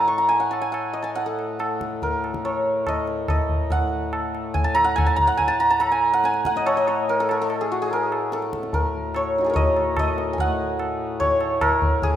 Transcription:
0.00 3.71 A2 medium
0.00 3.71 A3 medium
0.00 1.36 C#5 medium
0.00 0.93 D#5 medium
0.00 0.39 F#5 medium
0.00 0.24 A5 medium
0.08 1.77 C#6 medium
0.18 0.57 A#5 medium
0.29 0.57 G#5 loud
0.29 tabla tin medium
0.40 0.72 F#5 medium
0.51 0.68 A5 medium
0.51 tabla na medium
0.62 1.03 G#5 medium
0.72 1.15 F#5 medium
0.72 tabla na medium
0.93 2.88 D#5 medium
1.02 1.32 G#5 medium
1.02 1.10 A5 medium
1.15 3.31 F#5 medium
1.15 tabla tin medium
1.26 1.59 A4 medium
1.39 tabla na soft
1.59 2.09 A4 medium
1.59 tabla na medium
1.81 tabla ke medium
2.02 4.70 A#4 medium
2.02 tabla tin medium
2.02 tabla ge medium
2.24 tabla na medium
2.34 tabla ke medium
2.45 5.01 C#5 medium
2.45 tabla na medium
2.87 3.29 D#5 medium
2.87 tabla na medium
2.87 tabla ge medium
3.07 tabla te medium
3.28 5.68 D#5 medium
3.28 tabla na medium
3.28 tabla ge medium
3.49 tabla ge medium
3.70 10.38 A2 medium
3.70 10.38 A3 medium
3.70 4.84 F#5 loud
3.70 tabla tin loud
3.70 tabla ge medium
4.13 tabla na medium
4.35 tabla na medium
4.54 4.70 G#5 loud
4.54 tabla tin medium
4.54 tabla ge medium
4.64 4.81 A5 loud
4.75 5.12 A#5 loud
4.75 tabla na medium
4.84 5.27 F#5 loud
4.96 5.12 G#5 loud
4.96 tabla na medium
4.96 tabla ge medium
5.06 5.22 A5 loud
5.16 5.54 A#5 loud
5.16 tabla ge medium
5.27 6.13 F#5 loud
5.37 5.54 G#5 loud
5.37 tabla tin medium
5.37 tabla ge medium
5.48 5.66 A5 loud
5.60 5.76 A#5 loud
5.70 5.86 A5 loud
5.80 7.26 A#5 loud
5.80 tabla na medium
5.92 6.25 G#5 loud
6.13 6.46 F#5 loud
6.24 7.26 G#5 loud
6.24 tabla te medium
6.34 tabla te medium
6.45 8.62 F#5 loud
6.45 tabla ke medium
6.56 6.77 D#5 medium
6.56 tabla te medium
6.66 6.87 C#5 loud
6.66 tabla na medium
6.77 9.16 D#5 medium
6.87 9.16 C#5 medium
6.87 tabla na medium
7.08 7.26 A#4 medium
7.08 tabla tin medium
7.20 7.37 A4 medium
7.29 7.48 A#4 medium
7.29 tabla na medium
7.42 7.67 A4 medium
7.50 tabla na medium
7.61 7.81 G#4 medium
7.72 9.40 F#4 medium
7.82 8.39 G#4 medium
7.91 8.39 A#4 medium
7.91 tabla tin medium
8.12 tabla na medium
8.32 8.80 A4 medium
8.32 tabla te medium
8.42 tabla te medium
8.53 tabla ke medium
8.63 tabla te medium
8.73 9.49 A#4 medium
8.73 tabla tin medium
8.73 tabla ge medium
9.15 9.53 C#5 medium
9.15 tabla na medium
9.38 12.16 D#4 soft
9.38 12.16 F#4 soft
9.44 12.03 G#4 medium
9.44 10.39 A4 medium
9.50 11.61 A#4 medium
9.50 11.19 C#5 medium
9.56 9.99 D#5 loud
9.56 tabla tin medium
9.56 tabla ge medium
9.77 tabla na medium
9.97 12.16 D#5 medium
9.97 tabla na medium
9.97 tabla ge medium
10.18 tabla te medium
10.33 12.16 G#5 medium
10.38 12.16 A2 medium
10.38 12.16 A3 medium
10.38 12.16 F#5 loud
10.38 tabla tin loud
10.38 tabla ge medium
10.79 tabla na medium
11.20 12.16 C#5 loud
11.20 tabla tin medium
11.20 tabla ge medium
11.41 tabla na medium
11.61 12.16 A#4 loud
11.61 tabla na medium
11.61 tabla ge medium
11.82 tabla ge medium
12.02 12.16 G#4 loud
12.02 tabla tin medium
12.02 tabla ge medium

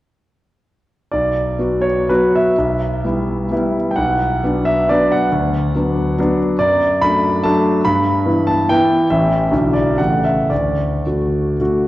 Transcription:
1.12 1.58 B1 soft
1.12 1.83 D5 medium
1.59 2.06 F#3 soft
1.59 2.06 B3 soft
1.59 2.07 F#4 soft
1.82 2.09 C#5 medium
2.09 2.54 F#3 soft
2.09 2.55 B3 soft
2.09 2.55 F#4 soft
2.09 2.35 B4 medium
2.35 3.75 E5 medium
2.58 3.03 B1 soft
3.04 3.48 G3 soft
3.04 3.48 B3 soft
3.04 3.48 E4 soft
3.51 3.93 G3 soft
3.51 3.94 B3 soft
3.51 3.93 E4 soft
3.91 3.98 G5 medium
3.96 4.42 B1 medium
3.96 4.66 F#5 medium
4.43 4.86 F#3 soft
4.43 4.86 B3 soft
4.43 4.87 D4 soft
4.65 4.89 E5 medium
4.89 5.29 F#3 soft
4.89 5.29 B3 soft
4.89 5.29 D4 medium
4.89 5.11 D5 medium
5.12 6.39 F#5 medium
5.32 5.74 D2 medium
5.75 6.14 F#3 soft
5.75 6.14 B3 soft
5.75 6.14 D4 soft
6.18 6.56 F#3 medium
6.18 6.56 B3 soft
6.18 6.56 D4 medium
6.59 7.01 F#2 medium
6.59 7.02 D5 medium
7.01 7.41 F#3 soft
7.01 7.41 A3 soft
7.01 7.41 D4 soft
7.01 7.44 B5 medium
7.44 7.80 F#3 medium
7.44 7.80 A3 medium
7.44 7.81 D4 medium
7.44 7.83 A5 medium
7.85 8.26 G2 medium
7.85 8.50 B5 medium
8.26 8.66 E3 soft
8.26 8.67 B3 soft
8.26 8.67 E4 soft
8.47 8.69 A5 medium
8.69 9.06 E3 medium
8.69 9.07 B3 soft
8.69 9.07 E4 soft
8.69 9.10 G5 medium
9.10 9.51 A1 medium
9.10 9.48 E3 soft
9.10 9.48 C#4 soft
9.10 9.49 G4 soft
9.10 9.74 E5 medium
9.52 9.98 B1 soft
9.52 9.95 D3 soft
9.52 9.95 D4 soft
9.52 9.96 F#4 soft
9.73 9.98 D5 medium
9.98 10.50 A1 soft
9.98 10.47 C#3 soft
9.98 10.47 A3 soft
9.98 10.48 G4 soft
9.98 10.24 F#5 medium
10.25 10.51 E5 medium
10.50 11.04 D2 soft
10.50 11.86 D5 medium
11.06 11.56 D3 soft
11.06 11.56 A3 soft
11.06 11.56 F#4 soft
11.60 11.88 D3 soft
11.60 11.88 A3 soft
11.60 11.88 F#4 soft

